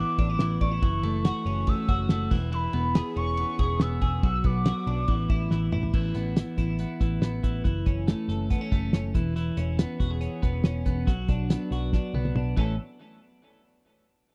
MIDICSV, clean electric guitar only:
0, 0, Header, 1, 2, 480
1, 0, Start_track
1, 0, Key_signature, 3, "major"
1, 0, Tempo, 427046
1, 927, Time_signature, 4, 2, 24, 8
1, 16128, End_track
2, 0, Start_track
2, 0, Title_t, "Clean electric guitar"
2, 0, Program_c, 0, 27
2, 0, Note_on_c, 0, 52, 55
2, 0, Note_on_c, 0, 59, 59
2, 0, Note_on_c, 0, 64, 65
2, 206, Note_off_c, 0, 64, 0
2, 211, Note_on_c, 0, 62, 80
2, 332, Note_off_c, 0, 62, 0
2, 332, Note_on_c, 0, 64, 49
2, 446, Note_off_c, 0, 52, 0
2, 451, Note_on_c, 0, 52, 64
2, 683, Note_off_c, 0, 64, 0
2, 687, Note_on_c, 0, 62, 79
2, 802, Note_off_c, 0, 62, 0
2, 802, Note_on_c, 0, 64, 62
2, 920, Note_off_c, 0, 52, 0
2, 924, Note_on_c, 0, 52, 77
2, 972, Note_off_c, 0, 64, 0
2, 976, Note_off_c, 0, 59, 0
2, 1164, Note_on_c, 0, 57, 64
2, 1401, Note_on_c, 0, 66, 63
2, 1640, Note_on_c, 0, 61, 62
2, 1867, Note_off_c, 0, 57, 0
2, 1880, Note_on_c, 0, 57, 52
2, 2106, Note_off_c, 0, 66, 0
2, 2120, Note_on_c, 0, 66, 76
2, 2347, Note_off_c, 0, 57, 0
2, 2360, Note_on_c, 0, 57, 61
2, 2583, Note_off_c, 0, 52, 0
2, 2596, Note_on_c, 0, 52, 96
2, 2647, Note_off_c, 0, 61, 0
2, 2648, Note_off_c, 0, 57, 0
2, 2648, Note_off_c, 0, 66, 0
2, 2818, Note_off_c, 0, 52, 0
2, 2832, Note_on_c, 0, 52, 78
2, 3075, Note_on_c, 0, 59, 66
2, 3317, Note_on_c, 0, 68, 67
2, 3555, Note_on_c, 0, 61, 59
2, 3799, Note_off_c, 0, 59, 0
2, 3803, Note_on_c, 0, 59, 50
2, 4025, Note_off_c, 0, 68, 0
2, 4038, Note_on_c, 0, 68, 75
2, 4274, Note_off_c, 0, 59, 0
2, 4279, Note_on_c, 0, 59, 60
2, 4502, Note_off_c, 0, 68, 0
2, 4515, Note_on_c, 0, 68, 81
2, 4751, Note_off_c, 0, 52, 0
2, 4757, Note_on_c, 0, 54, 86
2, 4802, Note_off_c, 0, 61, 0
2, 4803, Note_off_c, 0, 68, 0
2, 4991, Note_off_c, 0, 59, 0
2, 4996, Note_on_c, 0, 59, 64
2, 5234, Note_on_c, 0, 66, 70
2, 5474, Note_on_c, 0, 62, 61
2, 5708, Note_off_c, 0, 54, 0
2, 5713, Note_on_c, 0, 52, 70
2, 5762, Note_off_c, 0, 62, 0
2, 5762, Note_off_c, 0, 66, 0
2, 5955, Note_on_c, 0, 64, 76
2, 6189, Note_off_c, 0, 52, 0
2, 6193, Note_on_c, 0, 52, 56
2, 6431, Note_off_c, 0, 64, 0
2, 6435, Note_on_c, 0, 64, 74
2, 6669, Note_off_c, 0, 52, 0
2, 6674, Note_on_c, 0, 52, 81
2, 6904, Note_off_c, 0, 59, 0
2, 6909, Note_on_c, 0, 59, 60
2, 7146, Note_off_c, 0, 52, 0
2, 7150, Note_on_c, 0, 52, 61
2, 7389, Note_off_c, 0, 64, 0
2, 7394, Note_on_c, 0, 64, 58
2, 7625, Note_off_c, 0, 59, 0
2, 7639, Note_on_c, 0, 59, 50
2, 7871, Note_off_c, 0, 52, 0
2, 7876, Note_on_c, 0, 52, 59
2, 8100, Note_off_c, 0, 59, 0
2, 8113, Note_on_c, 0, 59, 57
2, 8353, Note_off_c, 0, 52, 0
2, 8357, Note_on_c, 0, 52, 66
2, 8588, Note_off_c, 0, 52, 0
2, 8593, Note_on_c, 0, 52, 77
2, 8644, Note_off_c, 0, 59, 0
2, 8833, Note_off_c, 0, 64, 0
2, 8838, Note_on_c, 0, 61, 52
2, 9076, Note_on_c, 0, 57, 62
2, 9317, Note_on_c, 0, 69, 54
2, 9554, Note_off_c, 0, 61, 0
2, 9558, Note_on_c, 0, 59, 53
2, 9679, Note_off_c, 0, 59, 0
2, 9679, Note_on_c, 0, 61, 45
2, 9786, Note_off_c, 0, 57, 0
2, 9799, Note_on_c, 0, 57, 69
2, 10028, Note_off_c, 0, 61, 0
2, 10042, Note_on_c, 0, 61, 58
2, 10270, Note_off_c, 0, 52, 0
2, 10283, Note_on_c, 0, 52, 83
2, 10329, Note_off_c, 0, 57, 0
2, 10329, Note_off_c, 0, 69, 0
2, 10330, Note_off_c, 0, 61, 0
2, 10507, Note_off_c, 0, 52, 0
2, 10521, Note_on_c, 0, 52, 78
2, 10760, Note_on_c, 0, 61, 62
2, 11001, Note_on_c, 0, 59, 61
2, 11238, Note_on_c, 0, 66, 67
2, 11359, Note_off_c, 0, 66, 0
2, 11359, Note_on_c, 0, 68, 51
2, 11460, Note_off_c, 0, 61, 0
2, 11474, Note_on_c, 0, 61, 55
2, 11712, Note_off_c, 0, 59, 0
2, 11716, Note_on_c, 0, 59, 71
2, 11951, Note_off_c, 0, 61, 0
2, 11965, Note_on_c, 0, 61, 62
2, 12191, Note_off_c, 0, 59, 0
2, 12204, Note_on_c, 0, 59, 68
2, 12439, Note_off_c, 0, 52, 0
2, 12443, Note_on_c, 0, 54, 83
2, 12493, Note_off_c, 0, 68, 0
2, 12494, Note_off_c, 0, 59, 0
2, 12495, Note_off_c, 0, 61, 0
2, 12689, Note_on_c, 0, 62, 61
2, 12931, Note_on_c, 0, 59, 58
2, 13173, Note_on_c, 0, 66, 60
2, 13400, Note_off_c, 0, 62, 0
2, 13413, Note_on_c, 0, 62, 58
2, 13639, Note_off_c, 0, 59, 0
2, 13653, Note_on_c, 0, 59, 70
2, 13882, Note_off_c, 0, 62, 0
2, 13895, Note_on_c, 0, 62, 58
2, 14120, Note_off_c, 0, 54, 0
2, 14125, Note_on_c, 0, 52, 94
2, 14133, Note_off_c, 0, 59, 0
2, 14134, Note_off_c, 0, 62, 0
2, 14134, Note_off_c, 0, 66, 0
2, 14139, Note_on_c, 0, 57, 99
2, 14147, Note_on_c, 0, 61, 105
2, 14156, Note_on_c, 0, 69, 96
2, 14321, Note_off_c, 0, 52, 0
2, 14328, Note_off_c, 0, 57, 0
2, 14332, Note_off_c, 0, 61, 0
2, 14336, Note_off_c, 0, 69, 0
2, 16128, End_track
0, 0, End_of_file